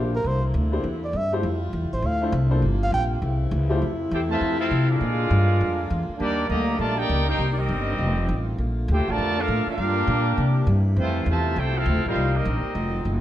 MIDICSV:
0, 0, Header, 1, 8, 480
1, 0, Start_track
1, 0, Key_signature, -1, "major"
1, 0, Tempo, 297915
1, 398, Time_signature, 4, 2, 24, 8
1, 21281, End_track
2, 0, Start_track
2, 0, Title_t, "Muted trumpet"
2, 0, Program_c, 0, 59
2, 250, Note_on_c, 0, 70, 92
2, 441, Note_on_c, 0, 72, 91
2, 465, Note_off_c, 0, 70, 0
2, 716, Note_off_c, 0, 72, 0
2, 1681, Note_on_c, 0, 74, 87
2, 1882, Note_on_c, 0, 76, 105
2, 1906, Note_off_c, 0, 74, 0
2, 2155, Note_off_c, 0, 76, 0
2, 3120, Note_on_c, 0, 72, 88
2, 3324, Note_on_c, 0, 77, 103
2, 3348, Note_off_c, 0, 72, 0
2, 3595, Note_off_c, 0, 77, 0
2, 4564, Note_on_c, 0, 77, 106
2, 4717, Note_off_c, 0, 77, 0
2, 4732, Note_on_c, 0, 79, 108
2, 4904, Note_off_c, 0, 79, 0
2, 21281, End_track
3, 0, Start_track
3, 0, Title_t, "Trumpet section"
3, 0, Program_c, 1, 61
3, 6654, Note_on_c, 1, 69, 58
3, 6657, Note_on_c, 1, 72, 64
3, 6657, Note_on_c, 1, 79, 70
3, 6660, Note_on_c, 1, 64, 66
3, 6782, Note_off_c, 1, 69, 0
3, 6784, Note_off_c, 1, 72, 0
3, 6785, Note_off_c, 1, 79, 0
3, 6786, Note_off_c, 1, 64, 0
3, 6940, Note_on_c, 1, 81, 102
3, 6941, Note_on_c, 1, 72, 88
3, 6942, Note_on_c, 1, 65, 90
3, 6945, Note_on_c, 1, 76, 85
3, 7380, Note_off_c, 1, 72, 0
3, 7380, Note_off_c, 1, 81, 0
3, 7381, Note_off_c, 1, 65, 0
3, 7383, Note_off_c, 1, 76, 0
3, 7408, Note_on_c, 1, 64, 93
3, 7411, Note_on_c, 1, 69, 82
3, 7414, Note_on_c, 1, 60, 87
3, 7414, Note_on_c, 1, 77, 102
3, 7853, Note_off_c, 1, 64, 0
3, 7855, Note_off_c, 1, 69, 0
3, 7856, Note_off_c, 1, 60, 0
3, 7857, Note_off_c, 1, 77, 0
3, 7891, Note_on_c, 1, 62, 89
3, 7895, Note_on_c, 1, 68, 87
3, 7897, Note_on_c, 1, 77, 104
3, 7901, Note_on_c, 1, 70, 91
3, 9744, Note_off_c, 1, 62, 0
3, 9746, Note_off_c, 1, 68, 0
3, 9747, Note_off_c, 1, 77, 0
3, 9749, Note_off_c, 1, 70, 0
3, 9988, Note_on_c, 1, 58, 90
3, 9992, Note_on_c, 1, 63, 94
3, 9992, Note_on_c, 1, 74, 115
3, 9993, Note_on_c, 1, 67, 85
3, 10435, Note_off_c, 1, 58, 0
3, 10437, Note_off_c, 1, 63, 0
3, 10437, Note_off_c, 1, 74, 0
3, 10438, Note_off_c, 1, 67, 0
3, 10462, Note_on_c, 1, 82, 91
3, 10463, Note_on_c, 1, 75, 92
3, 10465, Note_on_c, 1, 74, 83
3, 10470, Note_on_c, 1, 67, 79
3, 10912, Note_off_c, 1, 75, 0
3, 10912, Note_off_c, 1, 82, 0
3, 10913, Note_off_c, 1, 74, 0
3, 10916, Note_off_c, 1, 67, 0
3, 10947, Note_on_c, 1, 65, 95
3, 10947, Note_on_c, 1, 74, 93
3, 10949, Note_on_c, 1, 81, 104
3, 10952, Note_on_c, 1, 70, 90
3, 11224, Note_off_c, 1, 65, 0
3, 11224, Note_off_c, 1, 74, 0
3, 11225, Note_off_c, 1, 81, 0
3, 11227, Note_off_c, 1, 70, 0
3, 11241, Note_on_c, 1, 63, 97
3, 11246, Note_on_c, 1, 79, 115
3, 11248, Note_on_c, 1, 74, 106
3, 11249, Note_on_c, 1, 70, 104
3, 11722, Note_off_c, 1, 70, 0
3, 11724, Note_off_c, 1, 63, 0
3, 11726, Note_off_c, 1, 79, 0
3, 11727, Note_off_c, 1, 74, 0
3, 11742, Note_on_c, 1, 70, 97
3, 11743, Note_on_c, 1, 72, 81
3, 11746, Note_on_c, 1, 79, 93
3, 11748, Note_on_c, 1, 63, 98
3, 12051, Note_off_c, 1, 70, 0
3, 12052, Note_off_c, 1, 72, 0
3, 12054, Note_off_c, 1, 79, 0
3, 12055, Note_off_c, 1, 63, 0
3, 12116, Note_on_c, 1, 74, 65
3, 12220, Note_on_c, 1, 67, 81
3, 12221, Note_on_c, 1, 70, 82
3, 12223, Note_on_c, 1, 60, 84
3, 12223, Note_on_c, 1, 75, 95
3, 12231, Note_off_c, 1, 74, 0
3, 12877, Note_off_c, 1, 70, 0
3, 13654, Note_off_c, 1, 67, 0
3, 13656, Note_off_c, 1, 60, 0
3, 13656, Note_off_c, 1, 75, 0
3, 14380, Note_on_c, 1, 72, 83
3, 14382, Note_on_c, 1, 64, 81
3, 14382, Note_on_c, 1, 79, 97
3, 14390, Note_on_c, 1, 69, 80
3, 14624, Note_off_c, 1, 72, 0
3, 14625, Note_off_c, 1, 64, 0
3, 14625, Note_off_c, 1, 79, 0
3, 14630, Note_off_c, 1, 69, 0
3, 14668, Note_on_c, 1, 65, 91
3, 14668, Note_on_c, 1, 70, 97
3, 14669, Note_on_c, 1, 74, 105
3, 14669, Note_on_c, 1, 81, 115
3, 15119, Note_off_c, 1, 65, 0
3, 15119, Note_off_c, 1, 70, 0
3, 15119, Note_off_c, 1, 74, 0
3, 15119, Note_off_c, 1, 81, 0
3, 15148, Note_on_c, 1, 77, 122
3, 15149, Note_on_c, 1, 62, 89
3, 15152, Note_on_c, 1, 69, 96
3, 15154, Note_on_c, 1, 70, 97
3, 15593, Note_off_c, 1, 62, 0
3, 15599, Note_off_c, 1, 77, 0
3, 15601, Note_off_c, 1, 69, 0
3, 15602, Note_off_c, 1, 70, 0
3, 15612, Note_on_c, 1, 62, 105
3, 15615, Note_on_c, 1, 67, 99
3, 15620, Note_on_c, 1, 70, 91
3, 15621, Note_on_c, 1, 77, 109
3, 16675, Note_off_c, 1, 77, 0
3, 17448, Note_off_c, 1, 62, 0
3, 17450, Note_off_c, 1, 67, 0
3, 17452, Note_off_c, 1, 70, 0
3, 17707, Note_on_c, 1, 57, 81
3, 17707, Note_on_c, 1, 65, 88
3, 17707, Note_on_c, 1, 72, 101
3, 17708, Note_on_c, 1, 64, 79
3, 18139, Note_off_c, 1, 57, 0
3, 18139, Note_off_c, 1, 65, 0
3, 18139, Note_off_c, 1, 72, 0
3, 18140, Note_off_c, 1, 64, 0
3, 18205, Note_on_c, 1, 65, 80
3, 18209, Note_on_c, 1, 72, 80
3, 18210, Note_on_c, 1, 76, 90
3, 18211, Note_on_c, 1, 81, 97
3, 18654, Note_off_c, 1, 72, 0
3, 18661, Note_off_c, 1, 65, 0
3, 18663, Note_off_c, 1, 76, 0
3, 18664, Note_off_c, 1, 81, 0
3, 18674, Note_on_c, 1, 69, 103
3, 18674, Note_on_c, 1, 72, 83
3, 18680, Note_on_c, 1, 64, 91
3, 18680, Note_on_c, 1, 79, 110
3, 18952, Note_off_c, 1, 64, 0
3, 18952, Note_off_c, 1, 69, 0
3, 18952, Note_off_c, 1, 72, 0
3, 18955, Note_off_c, 1, 79, 0
3, 18964, Note_on_c, 1, 77, 113
3, 18967, Note_on_c, 1, 60, 89
3, 18971, Note_on_c, 1, 64, 91
3, 18971, Note_on_c, 1, 69, 91
3, 19429, Note_off_c, 1, 77, 0
3, 19431, Note_off_c, 1, 60, 0
3, 19433, Note_off_c, 1, 64, 0
3, 19433, Note_off_c, 1, 69, 0
3, 19449, Note_on_c, 1, 72, 85
3, 19450, Note_on_c, 1, 70, 88
3, 19451, Note_on_c, 1, 63, 85
3, 19452, Note_on_c, 1, 77, 102
3, 19880, Note_off_c, 1, 70, 0
3, 19880, Note_off_c, 1, 72, 0
3, 19881, Note_off_c, 1, 63, 0
3, 19882, Note_off_c, 1, 77, 0
3, 19911, Note_on_c, 1, 70, 75
3, 19915, Note_on_c, 1, 67, 72
3, 19915, Note_on_c, 1, 75, 89
3, 19919, Note_on_c, 1, 60, 74
3, 20567, Note_off_c, 1, 70, 0
3, 20569, Note_off_c, 1, 67, 0
3, 21281, Note_off_c, 1, 60, 0
3, 21281, Note_off_c, 1, 75, 0
3, 21281, End_track
4, 0, Start_track
4, 0, Title_t, "Upright piano"
4, 0, Program_c, 2, 0
4, 0, Note_on_c, 2, 58, 67
4, 0, Note_on_c, 2, 62, 59
4, 0, Note_on_c, 2, 65, 65
4, 0, Note_on_c, 2, 67, 65
4, 0, Note_on_c, 2, 72, 73
4, 180, Note_off_c, 2, 58, 0
4, 183, Note_off_c, 2, 62, 0
4, 188, Note_off_c, 2, 65, 0
4, 191, Note_off_c, 2, 67, 0
4, 192, Note_off_c, 2, 72, 0
4, 1156, Note_on_c, 2, 58, 66
4, 1158, Note_on_c, 2, 62, 60
4, 1170, Note_on_c, 2, 64, 67
4, 1176, Note_on_c, 2, 67, 61
4, 1177, Note_on_c, 2, 72, 83
4, 1329, Note_off_c, 2, 58, 0
4, 1330, Note_off_c, 2, 62, 0
4, 1336, Note_off_c, 2, 64, 0
4, 1340, Note_off_c, 2, 67, 0
4, 1340, Note_off_c, 2, 72, 0
4, 2132, Note_on_c, 2, 57, 80
4, 2137, Note_on_c, 2, 64, 76
4, 2145, Note_on_c, 2, 67, 74
4, 2146, Note_on_c, 2, 65, 67
4, 2154, Note_on_c, 2, 72, 89
4, 2296, Note_off_c, 2, 57, 0
4, 2299, Note_off_c, 2, 64, 0
4, 2303, Note_off_c, 2, 65, 0
4, 2303, Note_off_c, 2, 67, 0
4, 2307, Note_off_c, 2, 72, 0
4, 3570, Note_on_c, 2, 57, 81
4, 3574, Note_on_c, 2, 62, 67
4, 3583, Note_on_c, 2, 64, 70
4, 3589, Note_on_c, 2, 65, 73
4, 3596, Note_on_c, 2, 72, 84
4, 3734, Note_off_c, 2, 57, 0
4, 3736, Note_off_c, 2, 62, 0
4, 3741, Note_off_c, 2, 64, 0
4, 3744, Note_off_c, 2, 65, 0
4, 3747, Note_off_c, 2, 72, 0
4, 4030, Note_on_c, 2, 58, 78
4, 4033, Note_on_c, 2, 62, 73
4, 4041, Note_on_c, 2, 65, 69
4, 4045, Note_on_c, 2, 72, 91
4, 4049, Note_on_c, 2, 69, 76
4, 4204, Note_off_c, 2, 58, 0
4, 4206, Note_off_c, 2, 62, 0
4, 4210, Note_off_c, 2, 65, 0
4, 4212, Note_off_c, 2, 72, 0
4, 4213, Note_off_c, 2, 69, 0
4, 5950, Note_on_c, 2, 64, 73
4, 5955, Note_on_c, 2, 57, 86
4, 5960, Note_on_c, 2, 67, 75
4, 5963, Note_on_c, 2, 65, 80
4, 5971, Note_on_c, 2, 72, 82
4, 6123, Note_off_c, 2, 64, 0
4, 6125, Note_off_c, 2, 57, 0
4, 6128, Note_off_c, 2, 67, 0
4, 6129, Note_off_c, 2, 65, 0
4, 6134, Note_off_c, 2, 72, 0
4, 21281, End_track
5, 0, Start_track
5, 0, Title_t, "Saxophone section"
5, 0, Program_c, 3, 65
5, 0, Note_on_c, 3, 53, 86
5, 0, Note_on_c, 3, 58, 78
5, 0, Note_on_c, 3, 67, 90
5, 0, Note_on_c, 3, 69, 79
5, 331, Note_off_c, 3, 69, 0
5, 376, Note_off_c, 3, 67, 0
5, 378, Note_off_c, 3, 53, 0
5, 398, Note_on_c, 3, 64, 90
5, 409, Note_on_c, 3, 60, 83
5, 413, Note_on_c, 3, 50, 78
5, 2036, Note_off_c, 3, 50, 0
5, 2036, Note_off_c, 3, 58, 0
5, 2036, Note_off_c, 3, 60, 0
5, 2036, Note_off_c, 3, 64, 0
5, 2310, Note_on_c, 3, 55, 79
5, 2313, Note_on_c, 3, 65, 88
5, 2314, Note_on_c, 3, 64, 87
5, 2318, Note_on_c, 3, 57, 76
5, 3249, Note_off_c, 3, 64, 0
5, 3262, Note_off_c, 3, 55, 0
5, 3263, Note_off_c, 3, 65, 0
5, 3265, Note_off_c, 3, 57, 0
5, 3268, Note_on_c, 3, 64, 90
5, 3271, Note_on_c, 3, 50, 80
5, 3274, Note_on_c, 3, 53, 77
5, 3278, Note_on_c, 3, 60, 75
5, 4202, Note_on_c, 3, 57, 69
5, 4204, Note_on_c, 3, 65, 95
5, 4207, Note_on_c, 3, 48, 82
5, 4216, Note_on_c, 3, 58, 82
5, 4220, Note_off_c, 3, 64, 0
5, 4221, Note_off_c, 3, 50, 0
5, 4223, Note_off_c, 3, 53, 0
5, 4225, Note_off_c, 3, 60, 0
5, 5155, Note_off_c, 3, 58, 0
5, 5166, Note_off_c, 3, 57, 0
5, 5167, Note_off_c, 3, 65, 0
5, 5169, Note_off_c, 3, 48, 0
5, 5170, Note_on_c, 3, 64, 94
5, 5172, Note_on_c, 3, 60, 69
5, 5175, Note_on_c, 3, 58, 73
5, 5176, Note_on_c, 3, 49, 83
5, 6130, Note_off_c, 3, 64, 0
5, 6131, Note_off_c, 3, 60, 0
5, 6132, Note_off_c, 3, 58, 0
5, 6133, Note_off_c, 3, 49, 0
5, 6139, Note_on_c, 3, 57, 79
5, 6143, Note_on_c, 3, 48, 92
5, 6145, Note_on_c, 3, 53, 78
5, 6147, Note_on_c, 3, 64, 103
5, 8044, Note_off_c, 3, 57, 0
5, 8046, Note_off_c, 3, 48, 0
5, 8047, Note_off_c, 3, 53, 0
5, 8048, Note_off_c, 3, 64, 0
5, 8080, Note_on_c, 3, 50, 85
5, 8080, Note_on_c, 3, 56, 76
5, 8081, Note_on_c, 3, 58, 85
5, 8081, Note_on_c, 3, 65, 100
5, 9975, Note_off_c, 3, 50, 0
5, 9975, Note_off_c, 3, 56, 0
5, 9976, Note_off_c, 3, 65, 0
5, 9984, Note_on_c, 3, 62, 88
5, 9987, Note_on_c, 3, 67, 102
5, 9997, Note_on_c, 3, 51, 104
5, 11878, Note_on_c, 3, 60, 81
5, 11888, Note_off_c, 3, 62, 0
5, 12828, Note_off_c, 3, 58, 0
5, 12837, Note_on_c, 3, 57, 82
5, 12840, Note_off_c, 3, 67, 0
5, 12842, Note_on_c, 3, 65, 95
5, 13796, Note_off_c, 3, 51, 0
5, 13796, Note_off_c, 3, 60, 0
5, 13807, Note_off_c, 3, 65, 0
5, 13826, Note_on_c, 3, 58, 87
5, 13829, Note_on_c, 3, 50, 102
5, 13833, Note_on_c, 3, 65, 107
5, 15496, Note_off_c, 3, 57, 0
5, 15770, Note_on_c, 3, 55, 88
5, 16684, Note_off_c, 3, 50, 0
5, 16686, Note_off_c, 3, 65, 0
5, 16734, Note_on_c, 3, 48, 89
5, 16737, Note_on_c, 3, 64, 102
5, 17634, Note_off_c, 3, 58, 0
5, 17664, Note_off_c, 3, 55, 0
5, 17667, Note_on_c, 3, 53, 89
5, 17674, Note_on_c, 3, 57, 82
5, 19568, Note_on_c, 3, 58, 80
5, 19573, Note_on_c, 3, 63, 94
5, 19574, Note_off_c, 3, 53, 0
5, 19578, Note_off_c, 3, 57, 0
5, 19578, Note_on_c, 3, 55, 82
5, 19580, Note_off_c, 3, 64, 0
5, 20522, Note_on_c, 3, 54, 76
5, 20529, Note_on_c, 3, 57, 75
5, 20531, Note_off_c, 3, 48, 0
5, 20533, Note_on_c, 3, 65, 94
5, 20534, Note_off_c, 3, 58, 0
5, 20537, Note_off_c, 3, 63, 0
5, 20537, Note_on_c, 3, 51, 77
5, 20540, Note_off_c, 3, 55, 0
5, 21281, Note_off_c, 3, 51, 0
5, 21281, Note_off_c, 3, 54, 0
5, 21281, Note_off_c, 3, 57, 0
5, 21281, Note_off_c, 3, 65, 0
5, 21281, End_track
6, 0, Start_track
6, 0, Title_t, "Trombone section"
6, 0, Program_c, 4, 61
6, 6636, Note_on_c, 4, 67, 81
6, 6768, Note_off_c, 4, 67, 0
6, 6905, Note_on_c, 4, 57, 86
6, 6906, Note_on_c, 4, 48, 98
6, 6912, Note_on_c, 4, 52, 82
6, 7361, Note_off_c, 4, 48, 0
6, 7361, Note_off_c, 4, 57, 0
6, 7365, Note_off_c, 4, 52, 0
6, 7382, Note_on_c, 4, 65, 84
6, 7390, Note_on_c, 4, 57, 76
6, 7392, Note_on_c, 4, 60, 81
6, 7840, Note_off_c, 4, 65, 0
6, 7844, Note_off_c, 4, 57, 0
6, 7845, Note_off_c, 4, 60, 0
6, 7870, Note_on_c, 4, 56, 101
6, 7874, Note_on_c, 4, 62, 92
6, 7876, Note_on_c, 4, 65, 105
6, 9733, Note_off_c, 4, 56, 0
6, 9735, Note_off_c, 4, 62, 0
6, 9736, Note_off_c, 4, 65, 0
6, 9949, Note_on_c, 4, 55, 98
6, 9949, Note_on_c, 4, 58, 106
6, 9953, Note_on_c, 4, 62, 96
6, 10404, Note_off_c, 4, 55, 0
6, 10414, Note_off_c, 4, 58, 0
6, 10416, Note_off_c, 4, 62, 0
6, 10423, Note_on_c, 4, 55, 92
6, 10432, Note_on_c, 4, 58, 105
6, 10434, Note_on_c, 4, 50, 106
6, 10891, Note_off_c, 4, 55, 0
6, 10896, Note_off_c, 4, 58, 0
6, 10896, Note_on_c, 4, 57, 86
6, 10897, Note_off_c, 4, 50, 0
6, 11197, Note_off_c, 4, 57, 0
6, 11214, Note_on_c, 4, 58, 92
6, 11214, Note_on_c, 4, 62, 84
6, 11222, Note_on_c, 4, 67, 86
6, 11672, Note_off_c, 4, 67, 0
6, 11676, Note_off_c, 4, 58, 0
6, 11691, Note_on_c, 4, 67, 97
6, 11696, Note_on_c, 4, 58, 95
6, 11702, Note_on_c, 4, 63, 104
6, 11710, Note_off_c, 4, 62, 0
6, 12025, Note_off_c, 4, 67, 0
6, 12027, Note_off_c, 4, 58, 0
6, 12030, Note_off_c, 4, 63, 0
6, 12161, Note_on_c, 4, 58, 81
6, 12161, Note_on_c, 4, 63, 83
6, 12166, Note_on_c, 4, 55, 81
6, 12847, Note_off_c, 4, 58, 0
6, 13625, Note_off_c, 4, 63, 0
6, 13627, Note_off_c, 4, 55, 0
6, 14367, Note_on_c, 4, 67, 99
6, 14617, Note_off_c, 4, 67, 0
6, 14667, Note_on_c, 4, 57, 108
6, 14669, Note_on_c, 4, 50, 107
6, 14676, Note_on_c, 4, 53, 107
6, 15112, Note_off_c, 4, 57, 0
6, 15119, Note_off_c, 4, 50, 0
6, 15122, Note_off_c, 4, 53, 0
6, 15131, Note_on_c, 4, 57, 93
6, 15137, Note_on_c, 4, 65, 96
6, 15138, Note_on_c, 4, 62, 95
6, 15574, Note_off_c, 4, 62, 0
6, 15575, Note_off_c, 4, 65, 0
6, 15585, Note_on_c, 4, 58, 110
6, 15590, Note_off_c, 4, 57, 0
6, 15593, Note_on_c, 4, 62, 111
6, 15594, Note_on_c, 4, 65, 94
6, 16661, Note_off_c, 4, 65, 0
6, 17435, Note_off_c, 4, 58, 0
6, 17439, Note_off_c, 4, 62, 0
6, 17666, Note_on_c, 4, 57, 101
6, 17669, Note_on_c, 4, 52, 89
6, 17676, Note_on_c, 4, 60, 87
6, 18117, Note_off_c, 4, 57, 0
6, 18119, Note_off_c, 4, 52, 0
6, 18123, Note_off_c, 4, 60, 0
6, 18163, Note_on_c, 4, 52, 90
6, 18168, Note_on_c, 4, 57, 87
6, 18169, Note_on_c, 4, 48, 97
6, 18634, Note_on_c, 4, 67, 83
6, 18640, Note_off_c, 4, 52, 0
6, 18643, Note_off_c, 4, 48, 0
6, 18643, Note_off_c, 4, 57, 0
6, 18932, Note_off_c, 4, 67, 0
6, 18944, Note_on_c, 4, 57, 85
6, 18945, Note_on_c, 4, 65, 83
6, 18946, Note_on_c, 4, 60, 86
6, 19419, Note_off_c, 4, 57, 0
6, 19420, Note_off_c, 4, 65, 0
6, 19421, Note_off_c, 4, 60, 0
6, 19433, Note_on_c, 4, 58, 88
6, 19441, Note_on_c, 4, 65, 96
6, 19444, Note_on_c, 4, 55, 99
6, 19871, Note_off_c, 4, 58, 0
6, 19875, Note_off_c, 4, 65, 0
6, 19877, Note_off_c, 4, 55, 0
6, 19917, Note_on_c, 4, 55, 79
6, 19921, Note_on_c, 4, 58, 75
6, 19932, Note_on_c, 4, 63, 82
6, 20570, Note_off_c, 4, 55, 0
6, 20572, Note_off_c, 4, 58, 0
6, 21281, Note_off_c, 4, 63, 0
6, 21281, End_track
7, 0, Start_track
7, 0, Title_t, "Upright bass"
7, 0, Program_c, 5, 32
7, 0, Note_on_c, 5, 34, 97
7, 380, Note_off_c, 5, 34, 0
7, 391, Note_on_c, 5, 36, 94
7, 859, Note_off_c, 5, 36, 0
7, 868, Note_on_c, 5, 38, 102
7, 1337, Note_off_c, 5, 38, 0
7, 1346, Note_on_c, 5, 40, 95
7, 1816, Note_off_c, 5, 40, 0
7, 1823, Note_on_c, 5, 43, 98
7, 2294, Note_off_c, 5, 43, 0
7, 2305, Note_on_c, 5, 41, 97
7, 2775, Note_off_c, 5, 41, 0
7, 2785, Note_on_c, 5, 40, 105
7, 2940, Note_on_c, 5, 36, 58
7, 2965, Note_off_c, 5, 40, 0
7, 3098, Note_off_c, 5, 36, 0
7, 3108, Note_on_c, 5, 33, 68
7, 3251, Note_off_c, 5, 33, 0
7, 3260, Note_on_c, 5, 38, 97
7, 3732, Note_off_c, 5, 38, 0
7, 3743, Note_on_c, 5, 36, 118
7, 4213, Note_off_c, 5, 36, 0
7, 4223, Note_on_c, 5, 31, 91
7, 4692, Note_off_c, 5, 31, 0
7, 4705, Note_on_c, 5, 34, 105
7, 5173, Note_off_c, 5, 34, 0
7, 5184, Note_on_c, 5, 36, 98
7, 5653, Note_off_c, 5, 36, 0
7, 5659, Note_on_c, 5, 37, 109
7, 6130, Note_off_c, 5, 37, 0
7, 6148, Note_on_c, 5, 41, 88
7, 6614, Note_off_c, 5, 41, 0
7, 6627, Note_on_c, 5, 40, 105
7, 7090, Note_off_c, 5, 40, 0
7, 7100, Note_on_c, 5, 41, 89
7, 7570, Note_off_c, 5, 41, 0
7, 7585, Note_on_c, 5, 48, 100
7, 8052, Note_off_c, 5, 48, 0
7, 8064, Note_on_c, 5, 46, 91
7, 8532, Note_off_c, 5, 46, 0
7, 8547, Note_on_c, 5, 43, 105
7, 9013, Note_off_c, 5, 43, 0
7, 9032, Note_on_c, 5, 41, 93
7, 9496, Note_off_c, 5, 41, 0
7, 9511, Note_on_c, 5, 40, 111
7, 9786, Note_off_c, 5, 40, 0
7, 9986, Note_on_c, 5, 39, 91
7, 10453, Note_off_c, 5, 39, 0
7, 10465, Note_on_c, 5, 38, 95
7, 10929, Note_off_c, 5, 38, 0
7, 10938, Note_on_c, 5, 34, 90
7, 11409, Note_off_c, 5, 34, 0
7, 11428, Note_on_c, 5, 37, 101
7, 11890, Note_off_c, 5, 37, 0
7, 11900, Note_on_c, 5, 36, 90
7, 12370, Note_off_c, 5, 36, 0
7, 12382, Note_on_c, 5, 31, 100
7, 12851, Note_off_c, 5, 31, 0
7, 12865, Note_on_c, 5, 29, 89
7, 13333, Note_off_c, 5, 29, 0
7, 13350, Note_on_c, 5, 33, 107
7, 13816, Note_off_c, 5, 33, 0
7, 13829, Note_on_c, 5, 34, 96
7, 14296, Note_off_c, 5, 34, 0
7, 14311, Note_on_c, 5, 38, 104
7, 14470, Note_on_c, 5, 34, 60
7, 14495, Note_off_c, 5, 38, 0
7, 14619, Note_off_c, 5, 34, 0
7, 14629, Note_on_c, 5, 33, 71
7, 14779, Note_off_c, 5, 33, 0
7, 14789, Note_on_c, 5, 41, 90
7, 15256, Note_off_c, 5, 41, 0
7, 15275, Note_on_c, 5, 45, 99
7, 15550, Note_off_c, 5, 45, 0
7, 15753, Note_on_c, 5, 43, 92
7, 16218, Note_off_c, 5, 43, 0
7, 16230, Note_on_c, 5, 46, 107
7, 16698, Note_off_c, 5, 46, 0
7, 16715, Note_on_c, 5, 48, 101
7, 17181, Note_off_c, 5, 48, 0
7, 17187, Note_on_c, 5, 43, 109
7, 17656, Note_off_c, 5, 43, 0
7, 17666, Note_on_c, 5, 41, 99
7, 18133, Note_off_c, 5, 41, 0
7, 18142, Note_on_c, 5, 40, 100
7, 18615, Note_off_c, 5, 40, 0
7, 18627, Note_on_c, 5, 36, 98
7, 19094, Note_off_c, 5, 36, 0
7, 19104, Note_on_c, 5, 38, 115
7, 19265, Note_on_c, 5, 36, 61
7, 19289, Note_off_c, 5, 38, 0
7, 19415, Note_off_c, 5, 36, 0
7, 19425, Note_on_c, 5, 33, 76
7, 19574, Note_off_c, 5, 33, 0
7, 19584, Note_on_c, 5, 36, 89
7, 20057, Note_off_c, 5, 36, 0
7, 20064, Note_on_c, 5, 34, 110
7, 20347, Note_off_c, 5, 34, 0
7, 20540, Note_on_c, 5, 29, 94
7, 21015, Note_off_c, 5, 29, 0
7, 21028, Note_on_c, 5, 30, 94
7, 21281, Note_off_c, 5, 30, 0
7, 21281, End_track
8, 0, Start_track
8, 0, Title_t, "Muted upright bass strokes"
8, 9806, Note_on_c, 9, 29, 50
8, 9967, Note_off_c, 9, 29, 0
8, 15569, Note_on_c, 9, 29, 44
8, 15730, Note_off_c, 9, 29, 0
8, 20373, Note_on_c, 9, 29, 47
8, 20534, Note_off_c, 9, 29, 0
8, 21281, End_track
0, 0, End_of_file